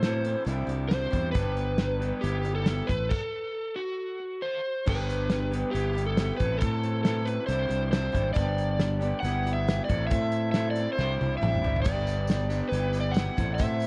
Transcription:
Already playing: A2 E3 A3 C4 E4 A4 C5
0.02 A2 E3 C4 E4 A4, snare, closed hi-hat
0.25 A3 C4 E4 A4, closed hi-hat
0.45 C2 C3 G3 C4 D4 E4 G4, closed hi-hat
0.67 C2 D4 E4 G4, closed hi-hat
0.89 G3 D4 E4 G4 C5, snare, closed hi-hat
1.10 E2 C3 G3 C4 D4 E4 G4, kick, closed hi-hat
1.32 G1 G2 D3 G3 B3 D4 G4 B4, kick, closed hi-hat
1.57 closed hi-hat
1.78 snare, closed hi-hat
2.02 G2 D3 G3 B3 D4 G4, closed hi-hat
2.21 G1 G3 B3 E4 G4, closed hi-hat
2.43 G3 B3 E4 G4, closed hi-hat
2.55 A4
2.66 G3 B3 E4 G4, snare, closed hi-hat
2.87 A1 A3 C4 E4 A4 B4, kick, closed hi-hat
3.09 A4, kick, crash
3.76 F#4
4.42 C5
4.86 G1 G2 D3 G3 B3 D4 G4 B4, kick, crash
5.10 closed hi-hat
5.30 snare, closed hi-hat
5.52 G2 D3 G3 B3 D4 G4, closed hi-hat
5.71 G1 G3 B3 E4 G4
5.75 G4, closed hi-hat
5.93 G3 B3 E4 G4
5.98 closed hi-hat
6.07 A4
6.17 G3 B3 E4 G4, snare, closed hi-hat
6.37 A1 A2 E3 A4 B4, kick, closed hi-hat
6.42 A3 C4 E4
6.58 A2 E3 A3 C4 E4 A4, closed hi-hat
6.62 A2 A4, kick
6.84 closed hi-hat
7.03 A2 E3 C4 E4 A4, snare, closed hi-hat
7.26 A3 C4 E4 A4 B4, closed hi-hat
7.46 C2 C3 G3 C4 D4 E4 G4 C5, closed hi-hat
7.69 C2 D4 E4 G4, closed hi-hat
7.92 G3 D4 E4 G4 C5, snare, closed hi-hat
8.12 G#1 C3 G3 C4 D4 E4 G4, kick, closed hi-hat
8.33 G1 G2 D3 G3 B3 D4 G4 D5, kick, closed hi-hat
8.58 closed hi-hat
8.80 snare, closed hi-hat
9.01 G2 D3 G3 B3 D4 G4, closed hi-hat
9.20 G1 G3 B3 E4 F#5
9.24 G4, closed hi-hat
9.46 G3 B3 E4 G4, closed hi-hat
9.53 E5
9.68 G3 B3 E4 G4, snare, closed hi-hat
9.84 A2 E3 D5
9.89 A1 A3 C4 E4 A4, kick, closed hi-hat
10.07 A2 E3 A3 C4 E5, closed hi-hat
10.11 E4 A4, kick
10.32 closed hi-hat
10.52 A2 E3 E5, snare, closed hi-hat
10.56 C4 E4 A4
10.70 D5
10.76 A3 C4 E4 A4, closed hi-hat
10.93 C5
10.97 C2 C3 G3 C4 D4 E4 G4, snare
11.21 C2 D4 E4 G4, high tom
11.37 G3 E5
11.41 A1 D4 E4 G4, mid tom
11.55 mid tom
11.63 G1 C3 G3 C4 D4 E4 G4, floor tom
11.76 floor tom
11.82 G2 D5, kick, closed hi-hat, tambourine, crash
11.86 G1 D3 G3 B3 D4 G4
12.07 closed hi-hat, tambourine
12.27 snare, closed hi-hat, tambourine
12.50 G2 D3 G3 B3 D4 G4, closed hi-hat, tambourine
12.69 G1 G3 B3 B4
12.73 E4 G4, closed hi-hat
12.93 G3 B3 E4 G4, closed hi-hat, tambourine
13.00 D5
13.11 F#5, tambourine
13.16 G3 B3 E4 G4, snare, closed hi-hat
13.36 A1 A2 E3 A3 C4 E4 A4, kick, closed hi-hat, tambourine
13.55 A2 E3 E5, tambourine
13.59 A2 A3 C4 E4 A4, kick, closed hi-hat
13.80 closed hi-hat, tambourine

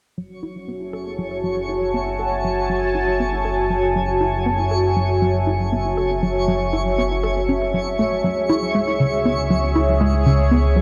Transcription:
0.17 F#1 F#3 F#4 C#5
0.26 C#5
0.43 E4
0.51 E5
0.68 B3
0.73 G#5
0.79 A5
0.93 A4
1.19 F#3
1.44 F#3
1.69 E4
1.94 B3
2.19 A4
2.44 F#3
2.70 F#3
2.95 E4
3.20 B3
3.45 A4
3.70 F#3
3.96 F#3
4.21 E4
4.46 B3
4.71 A4
4.96 F#3
5.22 F#3
5.47 E4
5.72 B3
5.97 A4
6.23 F#3
6.48 F#3
6.73 E4
6.98 B3
7.23 A4
7.49 C#4
7.74 F#3
7.99 A3
8.24 C#2 F#3 G#4
8.49 E4
8.75 G#3
9.00 C#3
9.25 B3
9.50 F#3
9.76 E4
10.01 G#3
10.26 C#3
10.51 B3
10.76 F#3

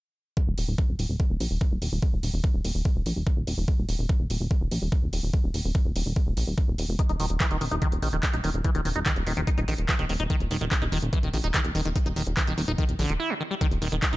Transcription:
0.37 kick
0.47 D#1
0.58 D#1, open hi-hat
0.68 D#1
0.78 kick
0.89 D#1
0.99 D#1, open hi-hat
1.09 D#1
1.20 kick
1.30 D#1
1.40 A#1, open hi-hat
1.51 D#1
1.61 kick
1.71 D#1
1.82 D#1, open hi-hat
1.92 D#1
2.02 kick
2.13 D#1
2.23 D#1, open hi-hat
2.33 D#1
2.44 kick
2.54 D#1
2.65 D#1, open hi-hat
2.75 D#1
2.85 kick
2.96 D#1
3.06 A#1, open hi-hat
3.16 D#1
3.27 kick
3.37 D#1
3.47 D#1, open hi-hat
3.58 D#1
3.68 kick
3.78 D#1
3.89 D#1, open hi-hat
3.99 D#1
4.09 kick
4.20 D#1
4.30 D#1, open hi-hat
4.40 D#1
4.51 kick
4.61 D#1
4.71 A#1, open hi-hat
4.82 D#1
4.92 kick
5.02 D#1
5.13 D#1, open hi-hat
5.23 D#1
5.34 kick
5.44 D#1
5.54 D#1, open hi-hat
5.65 D#1
5.75 kick
5.85 D#1
5.96 D#1, open hi-hat
6.06 D#1
6.16 kick
6.27 D#1
6.37 A#1, open hi-hat
6.47 D#1
6.58 kick
6.68 D#1
6.78 D#1, open hi-hat
6.89 E1
6.99 D#4, kick, closed hi-hat
7.09 D#1 D#4, closed hi-hat
7.20 D#1 D#3, open hi-hat
7.30 D#1, closed hi-hat
7.40 E3, kick, clap, closed hi-hat
7.51 D#1 D#3, closed hi-hat
7.61 D#1 D#3, open hi-hat
7.71 D#1 D#4, closed hi-hat
7.82 D#3, kick, closed hi-hat
7.92 D#1, closed hi-hat
8.02 A#1 D#3, open hi-hat
8.13 D#1 D#3, closed hi-hat
8.23 D#4, kick, clap, closed hi-hat
8.33 D#1 D#4, closed hi-hat
8.44 D#1 D#3, open hi-hat
8.54 D#1, closed hi-hat
8.65 E3, kick, closed hi-hat
8.75 D#1 D#3, closed hi-hat
8.85 D#1 D#3, open hi-hat
8.96 D#1 D#4, closed hi-hat
9.06 D#3, kick, clap, closed hi-hat
9.16 D#1, closed hi-hat
9.27 D#1 D#3, open hi-hat
9.37 D#1 D#3, closed hi-hat
9.47 D#4, kick, closed hi-hat
9.58 D#1 D#4, closed hi-hat
9.68 A#1 D#3, open hi-hat
9.78 D#1, closed hi-hat
9.89 E3, kick, clap, closed hi-hat
9.99 D#1 D#3, closed hi-hat
10.09 D#1 D#3, open hi-hat
10.20 D#1 D#4, closed hi-hat
10.30 D#3, kick, closed hi-hat
10.40 D#1, closed hi-hat
10.51 D#1 D#3, open hi-hat
10.61 D#1 D#3, closed hi-hat
10.71 D#4, kick, clap, closed hi-hat
10.82 D#1 D#4, closed hi-hat
10.92 D#1 D#3, open hi-hat
11.02 D#1, closed hi-hat
11.13 E3, kick, closed hi-hat
11.23 D#1 D#3, closed hi-hat
11.34 A#1 D#3, open hi-hat
11.44 D#1 D#4, closed hi-hat
11.54 D#3, kick, clap, closed hi-hat
11.65 D#1, closed hi-hat
11.75 D#1 D#3, open hi-hat
11.85 D#1 D#3, closed hi-hat
11.96 D#4, kick, closed hi-hat
12.06 D#1 D#4, closed hi-hat
12.16 D#1 D#3, open hi-hat
12.27 D#1, closed hi-hat
12.37 E3, kick, clap, closed hi-hat
12.47 D#1 D#3, closed hi-hat
12.58 D#1 D#3, open hi-hat
12.68 D#1 D#4, closed hi-hat
12.78 D#3, kick, closed hi-hat
12.89 D#1, closed hi-hat
12.99 A#1 D3, open hi-hat
13.09 D#1 D#3, closed hi-hat
13.20 E4
13.30 D#3
13.40 D#3
13.51 G3
13.61 D#3, kick, closed hi-hat
13.71 D#1, closed hi-hat
13.82 D#1 D#3, open hi-hat
13.92 D#1 D#3, closed hi-hat
14.02 D#4, kick, clap, closed hi-hat
14.13 D#1 D#4, closed hi-hat

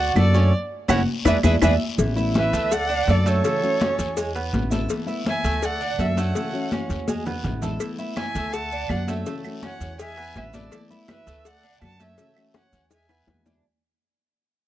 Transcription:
Already playing: D2 F#4 D5 F#5
0.15 F#2 D3 A3 D4 F#4 A4 D5, high bongo, low bongo, high conga, short guiro, claves, maracas
0.34 A3 C#4 D4 F#4, high bongo, short guiro, maracas
0.88 F#1 F#3 A3 C#4 E4 F#4 C#5 F#5, low bongo, high conga, long guiro, claves, maracas
1.25 E2 E3 G#3 B3 D4 E4 G#4 B4 E5, low bongo, high conga, long guiro, claves, maracas
1.43 E2 E3 G#3 B3 D4 E4 G#4 B4 E5, low bongo, high conga, long guiro, claves, maracas
1.61 E2 E3 G#3 B3 D4 E4 G#4 B4 E5, low bongo, high conga, long guiro, claves, maracas
1.97 A1 E3 A3 B3 E4, cowbell, high conga, maracas
2.16 A3 B3 E4, high conga, maracas
2.35 E3 A3 B3 E4 B4 E5, cowbell, high conga, short guiro, maracas
2.53 D2 A3, cowbell, short guiro, maracas
2.71 D5 F#5, muted nylon-string guitar stroke, cowbell, high conga, long guiro, maracas
2.89 D4, high conga, maracas
3.07 F#2 D3 A3 D4 F#4 A4 D5, cowbell, high conga, short guiro, maracas
3.25 A3 D4 F#4 A4 C#5, cowbell, short guiro, maracas
3.44 C#3 E3 A3 C#4 F#4, cowbell, high conga, long guiro, maracas
3.62 E3 A3 C#4 F#4, high conga, maracas
3.80 E3 A3 C#4 F#4, cowbell, high conga, short guiro, maracas
3.99 E2, cowbell, high conga, short guiro, maracas
4.17 G#3, muted nylon-string guitar stroke, cowbell, high conga, long guiro, maracas
4.35 B3, cowbell, high conga, maracas
4.53 A1 D3 G#3 B3 E4, cowbell, high conga, short guiro, maracas
4.70 D3 G#3 B3 E4 A4, cowbell, high conga, short guiro, maracas
4.89 E3 A3 B3 E4, cowbell, high conga, long guiro, maracas
5.06 A3 B3 E4, high conga, maracas
5.25 E3 A3 B3 E4 E5 G#5, cowbell, high conga, short guiro, maracas
5.44 D2 A3, cowbell, short guiro, maracas
5.62 D5 F#5, muted nylon-string guitar stroke, cowbell, high conga, long guiro, maracas
5.81 D4, high conga, maracas
5.98 F#2 D3 A3 D4 F#4 A4 E5, cowbell, high conga, short guiro, maracas
6.17 A3 D4 F#4 C#5 F#5, cowbell, high conga, short guiro, maracas
6.35 C#3 E3 A3 C#4 F#4, cowbell, high conga, long guiro, maracas
6.53 E3 A3 C#4 F#4, high conga, maracas
6.71 E3 A3 C#4 F#4, cowbell, high conga, short guiro, maracas
6.89 E2, cowbell, short guiro, maracas
7.08 G#3, muted nylon-string guitar stroke, cowbell, high conga, long guiro, maracas
7.26 B3, cowbell, low conga, maracas
7.44 A1 D3 G#3 B3 E4, cowbell, low conga, short guiro, maracas
7.62 D3 G#3 B3 E4 A4, cowbell, low conga, short guiro, maracas
7.80 E3 A3 B3 E4, cowbell, high conga, long guiro, claves, maracas
7.98 A3 B3 E4, high conga, maracas
8.16 E3 A3 B3 E4 E5 G#5, cowbell, high conga, short guiro, claves, maracas
8.35 D2 A3, cowbell, short guiro, maracas
8.53 F#5 A5, cowbell, high conga, long guiro, maracas
8.72 D4, high conga, maracas
8.89 F#2 D3 A3 D4 F#4 D5 F#5, cowbell, high conga, short guiro, claves, maracas
9.07 A3 D4 F#4 C#5 E5, cowbell, high conga, short guiro, maracas
9.26 C#3 E3 A3 C#4 F#4, cowbell, high conga, long guiro, maracas
9.44 E3 A3 C#4 F#4, high conga, claves, maracas
9.63 E3 A3 C#4 F#4 C#5 F#5, cowbell, high conga, short guiro, maracas
9.80 E2, cowbell, high conga, short guiro, maracas
9.99 G#3 E5 G#5, muted nylon-string guitar stroke, cowbell, high conga, long guiro, maracas
10.17 B3, cowbell, high conga, claves, maracas
10.35 A1 D3 G#3 B3 E4 B4 E5, cowbell, high conga, short guiro, maracas
10.53 D3 G#3 B3 E4 A4 B4 D5, cowbell, high conga, short guiro, maracas
10.72 E3 A3 B3 E4, cowbell, high conga, long guiro, claves, maracas
10.90 A3 B3 E4, high conga, maracas
11.08 E3 B3 E4 B4 E5, cowbell, high conga, short guiro, claves, maracas
11.26 D2 A3, cowbell, short guiro, maracas
11.45 D5 F#5, muted nylon-string guitar stroke, cowbell, high conga, long guiro, maracas
11.63 D4, high conga, maracas
11.81 F#2 D3 A3 D4 F#4 F#5 A5, cowbell, high conga, short guiro, claves, maracas
12.00 A3 D4 F#4 C#5 E5, cowbell, high conga, short guiro, maracas
12.17 C#3 E3 A3 C#4 F#4, cowbell, high conga, long guiro, maracas
12.36 E3 A3 C#4 F#4, high conga, claves, maracas
12.54 E3 A3 C#4 F#4 C#5 F#5, cowbell, high bongo, high conga, short guiro, maracas
12.72 E2, cowbell, high conga, short guiro, maracas
12.91 G#3 E5 G#5, muted nylon-string guitar stroke, cowbell, low bongo, high conga, long guiro, maracas
13.09 B3, cowbell, low bongo, high conga, claves, maracas
13.27 E2 D3 G#3 B3 E4, cowbell, low bongo, high conga, short guiro, maracas
13.46 D3 G#3 B3 D4 E4, cowbell, low bongo, high conga, short guiro, maracas

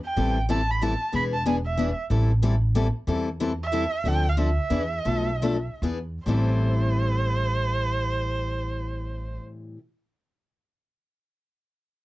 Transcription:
0.06 G5
0.16 A1 E3 G3 C4 E4 A4
0.49 E3 G3 C4 E4 A4 A5
0.70 B5
0.82 E3 G3 C4 E4 A4 A5
1.13 E1 E3 B3 D4 G#4 B5
1.34 A5
1.46 E3 B3 D4 G#4 G#5
1.67 E5
1.77 E3 B3 D4 G#4
2.10 A1 E3 G3 C4 E4 A4
2.42 E3 G3 C4 E4 A4
2.75 E3 G3 C4 E4 A4
3.07 E2 E3 G3 C4 E4 A4
3.40 E3 G3 C4 E4 A4
3.63 E5
3.72 E3 G3 C4 E4 A4
4.04 D2 D3 F3 C4 D4 A4
4.08 G5
4.29 F5
4.37 D3 F3 C4 D4 A4
4.41 E5
4.70 E2 E3 B3 D4 G#4
5.05 B1 B2 F3 A3 D4 A4
5.42 B2 F3 A3 D4 A4
5.82 E2 E3 B3 D4 G#4
6.26 A1 A2 E3 G3 C4 E4 A4 C5

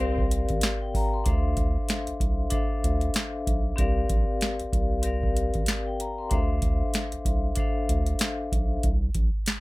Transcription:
Already playing: C2 C4 C5 F5
0.00 G4 A#4 D5 F5
0.18 kick
0.31 closed hi-hat
0.49 A1, kick, closed hi-hat
0.61 snare, closed hi-hat
0.81 G5
0.95 G5 A#5, kick, open hi-hat
1.14 C6
1.24 D2 D4 A4 C5 E5, kick, closed hi-hat
1.29 F5
1.57 kick, closed hi-hat
1.89 snare, closed hi-hat
2.07 C2, closed hi-hat
2.20 C2, kick, closed hi-hat
2.50 D4 A4 C5 E5, kick, closed hi-hat
2.55 F5
2.84 D2, kick, closed hi-hat
3.01 closed hi-hat
3.14 snare, closed hi-hat
3.47 B1, kick, closed hi-hat
3.76 C2 C4 G4 A#4 D5, kick, closed hi-hat
3.80 F5
4.09 A#1, kick, closed hi-hat
4.41 snare, closed hi-hat
4.60 C2, closed hi-hat
4.73 C2, kick, closed hi-hat
5.02 C4 G4 A#4 D5, closed hi-hat
5.07 F5
5.23 kick
5.37 closed hi-hat
5.54 A1, kick, closed hi-hat
5.66 snare, closed hi-hat
5.86 G5
6.00 G5 A#5, closed hi-hat
6.18 C6
6.30 D2 D4 A4 C5 E5, kick, closed hi-hat
6.34 F5
6.62 kick, closed hi-hat
6.94 snare, closed hi-hat
7.12 C2, closed hi-hat
7.25 C2, kick, closed hi-hat
7.55 D4 A4 C5 E5, kick, closed hi-hat
7.60 F5
7.89 D2, kick, closed hi-hat
8.06 closed hi-hat
8.19 snare, closed hi-hat
8.52 B1, kick, closed hi-hat
8.83 C2, kick, closed hi-hat
9.15 A#1, kick, closed hi-hat
9.46 snare, closed hi-hat

